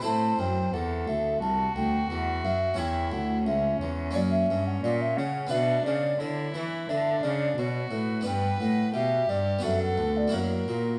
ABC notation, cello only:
X:1
M:4/4
L:1/8
Q:1/4=88
K:Ador
V:1 name="Cello" clef=bass
A,, F,, E,, D,, C,, D,, E,, F,, | [K:Bm] E,, D,, C,, E,, F,, G,, ^A,, C, | B,, C, D, E, D, C, B,, A,, | G,, A,, B,, G,, F,, D,, F,, ^A,, |]